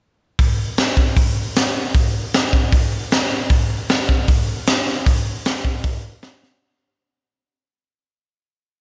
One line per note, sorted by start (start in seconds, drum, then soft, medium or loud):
0.39 kick loud
0.39 open hi-hat medium
0.77 snare loud
0.77 open hi-hat medium
0.97 kick medium
1.17 kick loud
1.17 open hi-hat medium
1.56 snare loud
1.56 open hi-hat medium
1.95 kick loud
1.95 open hi-hat medium
2.34 snare loud
2.34 open hi-hat medium
2.53 kick medium
2.72 kick loud
2.72 open hi-hat medium
3.11 snare loud
3.11 open hi-hat medium
3.50 kick loud
3.50 open hi-hat medium
3.89 snare loud
3.89 open hi-hat medium
4.09 kick medium
4.28 kick loud
4.28 open hi-hat medium
4.67 snare loud
4.67 open hi-hat medium
5.06 kick loud
5.06 open hi-hat medium
5.45 snare loud
5.45 open hi-hat medium
5.65 kick medium
5.84 kick loud
5.84 open hi-hat medium
6.22 snare loud
6.22 open hi-hat medium
6.43 snare medium